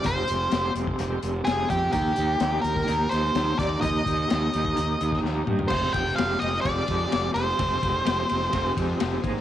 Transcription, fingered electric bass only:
\new Staff \with { instrumentName = "Fingered electric bass" } { \clef bass \time 4/4 \key f \dorian \tempo 4 = 127 f,,8 f,,8 f,,8 f,,8 f,,8 f,,8 f,,8 f,8 | ees,8 ees,8 ees,8 ees,8 ees,8 ees,8 ees,8 ees,8 | ees,8 ees,8 ees,8 ees,8 ees,8 ees,8 ees,8 g,8 | f,,8 f,,8 f,,8 f,,8 f,,8 f,8 f,,8 f,,8 |
f,,8 f,,8 f,,8 f,,8 f,,8 f,8 f,,8 aes,,8 | }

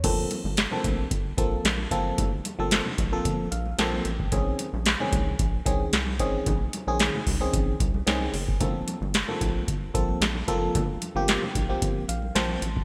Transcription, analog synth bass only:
\new Staff \with { instrumentName = "Analog synth bass" } { \clef bass \time 4/4 \key g \minor \tempo 4 = 112 g,,8 r16 g,,8 r16 bes,,8 g,,8 bes,,8 bes,,8 fis,,8 | g,,8 r16 g,,8 r16 bes,,8 g,,8 bes,,8 bes,,8 a,,8 | bes,,8 r16 bes,,8 r16 c,8 bes,,8 c,8 c,8 a,,8 | bes,,8 r16 bes,,8 r16 c,8 bes,,8 c,8 c,8 fis,,8 |
g,,8 r16 g,,8 r16 bes,,8 g,,8 bes,,8 bes,,8 fis,,8 | g,,8 r16 g,,8 r16 bes,,8 g,,8 bes,,8 bes,,8 a,,8 | }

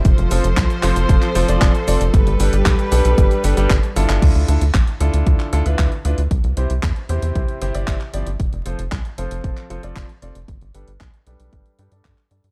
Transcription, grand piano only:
\new Staff \with { instrumentName = "Grand piano" } { \time 4/4 \key d \dorian \tempo 4 = 115 r8 <f c' f' a' c''>16 r8. <f c' f' a' c''>4 <f c' f' a' c''>16 <f c' f' a' d''>8 r16 <c' f' a' d''>16 r16 | r8 <g d' g' a' b'>16 r8. <g d' g' a' b'>4 <g d' g' a' b'>16 <g d' g' a' b'>16 r8 <d d' e' f' a'>8~ | <d d' e' f' a'>8 <d d' e' f' a'>16 r8. <d d' e' f' a'>4 <d d' e' f' a'>16 <d d' e' f' b'>8 r16 <d' e' f' b'>16 r16 | r8 <c c' e' g' c''>16 r8. <c c' e' g' c''>4 <c c' e' g' c''>16 <c c' e' g' d''>8 r16 <f c' e' g' d''>16 r16 |
r8 <f c' f' a' c''>16 r8. <f c' f' a' c''>4 <f c' f' a' c''>16 <f c' f' a' d''>8 r16 <c' f' a' d''>16 r16 | r8 <g d' g' a' b'>16 r8. <g d' g' a' b'>4 <g d' g' a' b'>16 <g d' g' a' d''>8 r16 <g d' g' a' d''>16 r16 | }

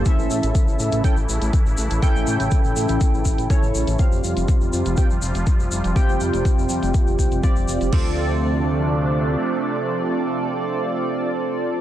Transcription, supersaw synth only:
\new Staff \with { instrumentName = "Supersaw synth" } { \clef bass \time 4/4 \key d \minor \tempo 4 = 122 <cis e e' a'>1~ | <cis e e' a'>1 | <c f g f'>1~ | <c f g f'>1 |
<c f a d'>1~ | <c f a d'>1 | }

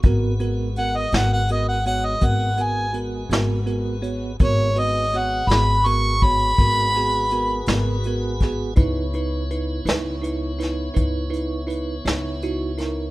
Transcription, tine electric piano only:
\new Staff \with { instrumentName = "Tine electric piano" } { \time 12/8 \key gis \minor \tempo 4. = 55 <b fis' ais'>8 <b fis' ais'>8 <b fis' ais'>8 <b fis' ais'>8 <b fis' ais'>8 <b fis' cis''>8 <b fis' ais'>8 <b fis' ais'>8 <b fis' ais'>8 <b fis' ais'>8 <b fis' ais'>8 <b fis' cis''>8 | <b fis' ais'>8 <b fis' b'>8 <b fis' cis''>8 <b fis' gis'>8 <b fis' ais'>8 <b fis' cis''>8 <b fis' ais'>8 <b fis' gis'>8 <b fis' ais'>8 <b fis' ais'>8 <b fis' ais'>8 <b fis' gis'>8 | <dis' e' b'>8 <dis' e' b'>8 <dis' e' b'>8 <dis' e' b'>8 <dis' e' b'>8 <dis' e' b'>8 <dis' e' b'>8 <dis' e' b'>8 <dis' e' b'>8 <dis' e' cis''>8 <dis' e' fis'>8 <dis' e' ais'>8 | }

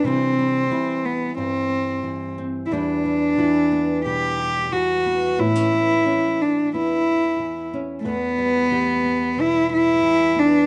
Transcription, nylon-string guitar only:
\new Staff \with { instrumentName = "Nylon-string guitar" } { \clef bass \time 4/4 \key e \minor \tempo 4 = 90 << { <e g c' e'>8 g8 e'4 g4. c'8 | <e g b e'>8 g8 e'8 b8 g4. b8 | b16 cis'16 b8 cis'8 r8 b4. cis'8 | b8 g8 g'8 b8 g4. b8 | } \\ { c4 e4 g,4 e4 | e,4 e4 b,4 e4 | a,4 e4 e,4 e4 | e,4 e4 b,4 e4 | } >> }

